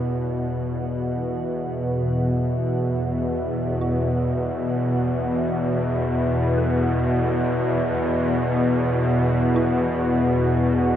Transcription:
0.00 10.96 E2 medium
0.00 10.96 B2 medium
0.00 10.96 B3 medium
0.00 10.96 F#4 medium
0.00 10.96 E5 medium
0.00 10.96 F#5 medium
3.81 9.55 E4 medium
6.58 10.96 A4 medium
9.56 10.96 E4 medium

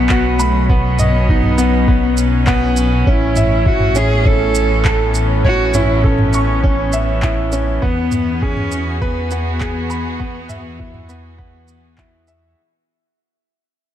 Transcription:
0.00 3.04 B1 medium
0.00 3.07 B2 medium
0.00 3.08 F#3 medium
0.00 0.40 B3 loud
0.00 0.70 B3 medium
0.00 9.74 C#4 medium
0.00 0.10 F#4 medium
0.00 3.09 B4 medium
0.09 0.38 F#4 medium
0.09 kick loud
0.09 clap medium
0.38 0.70 A3 medium
0.38 0.68 B5 medium
0.38 shaker medium
0.69 2.77 B3 loud
0.69 0.98 B3 medium
0.69 kick loud
0.99 1.27 D#5 medium
0.99 mid tom medium
0.99 shaker medium
1.29 1.57 D#4 medium
1.29 kick loud
1.43 mid tom medium
1.58 1.75 B3 medium
1.58 shaker medium
1.88 2.16 B3 medium
1.88 kick loud
2.17 shaker medium
2.47 2.76 B3 loud
2.47 kick loud
2.47 clap medium
2.77 shaker medium
3.07 7.83 A2 medium
3.07 3.35 C#4 medium
3.07 3.69 E4 medium
3.07 kick loud
3.36 3.65 E5 medium
3.36 mid tom medium
3.36 shaker medium
3.54 12.58 E3 medium
3.66 3.94 E4 medium
3.66 3.98 F#4 medium
3.66 kick loud
3.80 mid tom medium
3.95 4.13 C#4 medium
3.95 4.29 G#4 loud
3.95 shaker medium
4.11 12.58 B3 medium
4.25 4.54 C#4 medium
4.25 5.16 A4 loud
4.25 kick loud
4.55 shaker medium
4.85 5.13 A4 medium
4.85 kick loud
4.85 clap medium
5.15 shaker medium
5.44 5.76 F#4 loud
5.44 5.73 C#5 medium
5.44 kick medium
5.74 6.03 C#4 medium
5.74 6.06 E4 loud
5.74 mid tom medium
5.74 shaker medium
6.04 7.23 C#4 medium
6.04 6.32 A4 medium
6.04 kick loud
6.18 mid tom medium
6.33 6.62 C#6 medium
6.33 shaker medium
6.64 6.92 C#4 medium
6.64 kick loud
6.93 7.21 E5 medium
6.93 shaker medium
7.22 7.51 E4 medium
7.22 kick loud
7.22 clap medium
7.52 7.70 C#4 medium
7.52 shaker medium
7.82 12.55 E2 medium
7.82 8.10 B3 medium
7.82 8.44 B3 loud
7.82 kick loud
8.12 mid tom medium
8.12 shaker medium
8.31 12.57 G#4 medium
8.42 9.04 C#4 loud
8.42 8.70 G#4 medium
8.42 kick loud
8.57 12.58 F#4 medium
8.57 mid tom medium
8.72 shaker medium
9.02 11.99 B3 loud
9.02 9.30 B4 medium
9.02 kick loud
9.31 9.59 B3 medium
9.31 shaker medium
9.60 9.89 G#4 medium
9.60 kick loud
9.60 clap medium
9.90 10.18 B5 medium
9.90 shaker medium
10.20 10.48 B3 medium
10.20 kick loud
10.49 10.78 E5 medium
10.49 mid tom medium
10.49 shaker medium
10.79 11.07 E4 medium
10.79 kick loud
10.94 mid tom medium
11.09 11.26 B3 medium
11.09 shaker medium
11.38 11.67 B3 medium
11.38 kick loud
11.68 shaker medium
11.98 12.26 E4 medium
11.98 kick loud
11.98 clap medium
12.28 12.45 E5 medium
12.28 shaker medium

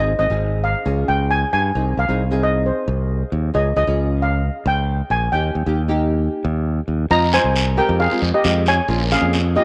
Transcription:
0.00 0.14 G#1 medium
0.00 0.10 D#4 medium
0.00 0.10 G#4 medium
0.19 0.28 G#1 medium
0.19 0.26 C4 medium
0.19 0.26 D#4 medium
0.19 0.26 G#4 medium
0.19 0.65 D#5 medium
0.30 0.74 G#1 medium
0.30 0.84 C4 medium
0.30 0.84 D#4 medium
0.30 0.84 G#4 medium
0.64 1.10 F5 medium
0.85 1.03 C#2 medium
0.85 1.57 C#4 medium
0.85 1.58 F4 medium
0.85 1.58 G#4 medium
1.08 1.43 C#2 medium
1.08 1.29 G5 medium
1.31 1.52 G#5 medium
1.53 1.71 G2 medium
1.53 1.95 G#5 medium
1.75 1.93 C2 medium
1.75 1.96 C4 medium
1.75 1.96 D#4 medium
1.75 1.96 G#4 medium
1.97 2.06 C2 medium
1.97 2.40 F5 medium
2.08 2.70 C2 medium
2.08 2.22 C4 medium
2.08 2.22 D#4 medium
2.08 2.23 G#4 medium
2.31 2.85 C4 medium
2.31 2.85 D#4 medium
2.31 2.85 G#4 medium
2.43 2.66 D#5 medium
2.66 3.29 C5 medium
2.88 3.22 C2 medium
3.32 3.49 D#2 medium
3.54 3.72 C#2 medium
3.54 3.68 C#4 medium
3.54 3.68 F4 medium
3.54 3.68 G#4 medium
3.54 3.75 D#5 medium
3.76 3.85 C#2 medium
3.76 3.83 C#4 medium
3.76 3.83 F4 medium
3.76 3.83 G#4 medium
3.76 4.23 D#5 medium
3.87 4.48 C#2 medium
3.87 4.41 C#4 medium
3.87 4.41 F4 medium
3.87 4.42 G#4 medium
4.22 4.63 F5 medium
4.66 5.01 C#2 loud
4.66 5.13 G5 medium
5.10 5.28 A#1 medium
5.10 5.34 G#5 medium
5.32 5.50 D#2 medium
5.32 5.53 A#3 medium
5.32 5.53 D#4 medium
5.32 5.54 G4 medium
5.32 6.62 G5 medium
5.55 5.64 D#2 medium
5.66 6.27 D#2 medium
5.66 5.80 A#3 medium
5.66 5.80 D#4 medium
5.66 5.80 G4 medium
5.88 6.42 A#3 medium
5.88 6.42 D#4 medium
5.88 6.42 G4 medium
6.45 6.79 D#2 medium
6.88 7.06 D#2 medium
7.10 7.37 F2 loud
7.10 7.24 G#3 medium
7.10 7.24 C4 medium
7.10 7.24 F4 medium
7.10 7.22 D#5 medium
7.10 7.21 A#5 loud
7.10 long guiro medium
7.33 7.60 G#3 medium
7.33 7.60 C4 medium
7.33 7.60 F4 medium
7.33 7.75 C5 medium
7.33 7.79 G#5 loud
7.33 short guiro medium
7.44 7.79 C2 medium
7.56 short guiro medium
7.77 7.97 G#3 medium
7.77 7.97 C4 medium
7.77 7.98 G4 medium
7.77 7.99 A#4 medium
7.77 8.01 G5 medium
7.89 8.06 F2 medium
8.00 8.31 G#4 medium
8.00 8.31 F5 medium
8.00 long guiro medium
8.11 8.31 G#3 medium
8.11 8.31 C4 medium
8.11 8.31 F4 medium
8.22 8.31 F2 medium
8.34 8.65 G4 medium
8.34 8.65 D#5 medium
8.44 8.79 F2 medium
8.44 8.71 G#3 medium
8.44 8.71 C4 medium
8.44 8.71 G4 medium
8.44 short guiro medium
8.66 9.09 C#5 medium
8.66 9.13 G#5 medium
8.66 short guiro medium
8.88 9.14 A#1 medium
8.88 9.02 A#3 medium
8.88 9.02 C#4 medium
8.88 9.02 F4 medium
8.88 long guiro medium
9.11 9.37 A#3 medium
9.11 9.38 C#4 medium
9.11 9.53 G#4 medium
9.11 9.38 G#4 medium
9.11 9.53 F5 medium
9.11 short guiro medium
9.22 9.56 F2 medium
9.33 short guiro medium
9.55 9.64 A#3 medium
9.55 9.64 C#4 medium
9.55 9.64 F4 medium
9.55 9.64 G4 medium
9.55 9.64 D#5 medium

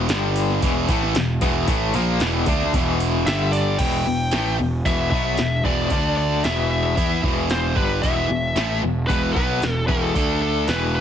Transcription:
0.09 0.58 G1 loud
0.09 0.61 G2 medium
0.09 0.62 D3 medium
0.09 0.62 G3 loud
0.09 snare loud
0.09 open hi-hat medium
0.36 open hi-hat medium
0.51 snare soft
0.62 0.87 E1 medium
0.62 0.88 E2 loud
0.62 0.88 B2 loud
0.62 0.88 E3 loud
0.62 kick loud
0.62 open hi-hat medium
0.88 1.13 A1 medium
0.88 1.14 A2 loud
0.88 1.15 E3 loud
0.88 1.15 A3 loud
0.88 kick loud
0.88 open hi-hat medium
1.03 snare soft
1.15 1.40 E1 medium
1.15 1.36 E2 medium
1.15 1.37 B2 medium
1.15 snare loud
1.15 open hi-hat medium
1.41 1.66 E1 medium
1.41 1.67 E2 medium
1.41 1.68 B2 medium
1.41 1.67 E3 loud
1.41 kick loud
1.41 open hi-hat medium
1.68 1.92 A1 medium
1.68 1.94 A2 medium
1.68 1.94 E3 loud
1.68 1.94 A3 loud
1.68 kick loud
1.68 open hi-hat medium
1.94 2.19 A#1 loud
1.94 2.20 A#2 medium
1.94 2.20 F3 medium
1.94 2.21 A#3 loud
1.94 open hi-hat medium
2.20 2.45 E1 medium
2.20 2.47 E2 medium
2.20 2.47 B2 medium
2.20 2.47 E3 loud
2.20 snare loud
2.20 open hi-hat medium
2.46 2.71 D2 medium
2.46 2.73 D3 medium
2.46 2.73 A3 loud
2.46 2.74 D4 loud
2.46 kick medium
2.46 open hi-hat medium
2.61 snare soft
2.73 3.23 E1 medium
2.73 3.26 E2 medium
2.73 3.26 B2 loud
2.73 3.26 E3 medium
2.73 kick loud
2.73 open hi-hat medium
3.00 open hi-hat medium
3.26 3.76 G1 medium
3.26 3.79 G2 medium
3.26 3.79 D3 loud
3.26 3.79 G3 medium
3.26 3.52 E5 medium
3.26 snare medium
3.26 open hi-hat medium
3.53 3.80 D5 medium
3.53 open hi-hat medium
3.78 4.04 E1 medium
3.78 4.05 E2 medium
3.78 4.06 B2 medium
3.78 4.06 E3 medium
3.78 4.54 G5 medium
3.78 kick loud
3.78 open hi-hat soft
3.78 crash medium
4.07 4.31 E1 medium
4.07 4.27 E2 medium
4.07 4.27 B2 medium
4.32 4.58 A1 medium
4.32 4.58 A2 medium
4.32 4.58 E3 medium
4.32 4.59 A3 loud
4.32 snare loud
4.32 open hi-hat soft
4.59 4.84 E1 medium
4.59 4.80 E2 medium
4.59 4.81 B2 medium
4.85 5.10 E1 medium
4.85 5.12 E2 medium
4.85 5.11 B2 medium
4.85 5.12 E3 loud
4.85 5.09 E5 loud
4.85 kick loud
4.85 open hi-hat soft
5.10 5.36 B1 medium
5.10 5.38 B2 medium
5.10 5.38 F#3 medium
5.10 5.38 B3 medium
5.10 5.64 E5 loud
5.10 kick loud
5.37 5.63 E1 medium
5.37 5.60 E2 medium
5.37 5.60 B2 medium
5.37 snare medium
5.37 open hi-hat soft
5.64 5.89 E1 medium
5.64 5.90 E2 medium
5.64 5.91 B2 medium
5.64 5.91 E3 medium
5.64 6.14 D5 medium
5.64 kick loud
5.90 6.40 D2 medium
5.90 6.43 D3 medium
5.90 6.44 A3 medium
5.90 6.44 D4 medium
5.90 kick loud
5.90 open hi-hat medium
6.17 6.44 D5 medium
6.44 6.94 E1 medium
6.44 6.96 E2 medium
6.44 6.96 B2 medium
6.44 6.95 E3 medium
6.44 6.70 E5 medium
6.44 snare loud
6.44 open hi-hat soft
6.71 7.20 E5 medium
6.97 7.22 E2 medium
6.97 7.23 E3 medium
6.97 7.23 B3 medium
6.97 7.23 E4 medium
6.97 kick medium
6.97 open hi-hat soft
7.23 7.73 E1 medium
7.23 7.75 E2 medium
7.23 7.76 B2 medium
7.23 7.76 E3 loud
7.23 kick loud
7.50 7.76 C5 medium
7.50 snare loud
7.50 open hi-hat soft
7.76 8.01 G1 medium
7.76 8.02 G2 medium
7.76 8.02 D3 medium
7.76 8.02 G3 loud
7.76 8.01 B4 medium
7.76 kick loud
8.02 8.28 E1 medium
8.02 8.29 E2 medium
8.02 8.29 B2 medium
8.02 8.29 E3 medium
8.02 8.78 E5 medium
8.02 kick loud
8.02 open hi-hat soft
8.29 8.54 E1 medium
8.29 8.51 E2 medium
8.29 8.51 B2 medium
8.56 8.81 A1 medium
8.56 8.81 A2 medium
8.56 8.82 E3 medium
8.56 8.82 A3 medium
8.56 snare loud
8.56 open hi-hat soft
8.82 9.07 E1 medium
8.82 9.04 E2 medium
8.82 9.04 B2 medium
9.07 9.34 E1 medium
9.07 9.35 E2 medium
9.07 9.34 B2 medium
9.07 9.35 E3 medium
9.07 9.32 B4 loud
9.07 kick medium
9.07 open hi-hat soft
9.33 9.60 B1 medium
9.33 9.60 B2 medium
9.33 9.61 F#3 medium
9.33 9.61 B3 medium
9.33 9.84 B4 loud
9.33 kick loud
9.61 9.87 E1 medium
9.61 9.83 E2 medium
9.61 9.83 B2 medium
9.61 snare medium
9.61 open hi-hat soft
9.87 10.13 E1 medium
9.87 10.14 E2 medium
9.87 10.14 B2 medium
9.87 10.15 E3 medium
9.87 10.41 A4 medium
9.87 kick medium
10.15 10.64 D2 medium
10.15 10.67 D3 medium
10.15 10.67 A3 loud
10.15 10.68 D4 medium
10.15 kick loud
10.15 open hi-hat soft
10.42 10.68 A4 medium
10.67 11.01 E1 medium
10.67 11.01 E2 medium
10.67 11.01 B2 medium
10.67 11.01 E3 medium
10.67 10.94 B4 medium
10.67 snare medium
10.67 open hi-hat soft
10.95 11.01 B4 medium

